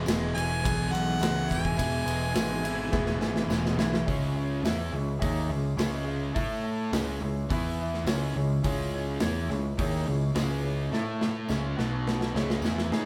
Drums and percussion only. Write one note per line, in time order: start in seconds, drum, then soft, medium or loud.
0.06 snare loud
0.06 ride loud
0.06 tambourine medium
0.38 ride medium
0.65 kick loud
0.65 ride loud
0.91 ride medium
0.91 tambourine medium
1.19 snare loud
1.19 ride medium
1.19 tambourine loud
1.48 kick medium
1.48 ride medium
1.48 tambourine medium
1.65 kick medium
1.76 kick medium
1.76 ride medium
1.76 tambourine medium
2.06 ride medium
2.06 tambourine medium
2.35 snare loud
2.35 ride medium
2.35 tambourine loud
2.64 ride medium
2.64 tambourine soft
2.92 kick loud
2.92 snare medium
3.06 snare medium
3.21 snare medium
3.21 tambourine medium
3.36 snare medium
3.50 snare medium
3.50 tambourine loud
3.66 snare medium
3.79 snare loud
3.79 tambourine medium
3.94 snare medium
4.08 kick loud
4.08 open hi-hat medium
4.65 snare loud
4.65 open hi-hat medium
4.65 tambourine medium
5.22 kick loud
5.22 open hi-hat medium
5.78 snare loud
5.78 open hi-hat soft
5.78 tambourine loud
6.36 kick loud
6.36 open hi-hat medium
6.93 snare loud
6.93 open hi-hat medium
6.93 tambourine medium
7.50 kick loud
7.50 open hi-hat medium
7.94 snare soft
8.07 snare loud
8.07 open hi-hat medium
8.07 tambourine loud
8.64 kick loud
8.64 open hi-hat medium
9.20 snare loud
9.20 open hi-hat medium
9.20 tambourine medium
9.50 snare soft
9.79 kick loud
9.79 open hi-hat medium
10.35 snare loud
10.35 open hi-hat medium
10.35 tambourine medium
10.93 snare medium
11.21 snare medium
11.49 snare medium
11.49 tambourine medium
11.79 snare medium
12.07 snare medium
12.21 snare medium
12.36 snare medium
12.50 snare medium
12.62 snare medium
12.62 tambourine medium
12.78 snare medium
12.92 snare loud